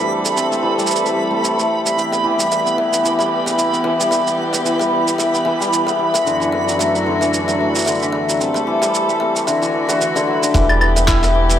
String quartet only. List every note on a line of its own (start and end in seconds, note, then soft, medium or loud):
0.00 1.95 G3 medium
0.00 1.95 C4 medium
0.00 1.95 A4 medium
1.97 6.22 E3 medium
1.97 6.22 B3 medium
1.97 6.22 G4 medium
6.26 8.38 F#2 medium
6.26 8.38 E3 medium
6.26 8.38 D4 medium
6.26 8.38 F#4 medium
8.40 9.46 G3 medium
8.40 9.47 C4 medium
8.40 9.46 A4 medium
9.47 10.52 E3 medium
9.47 10.53 D4 medium
9.47 10.53 F#4 medium
10.53 11.59 E3 medium
10.53 11.59 B3 medium
10.53 11.59 G4 medium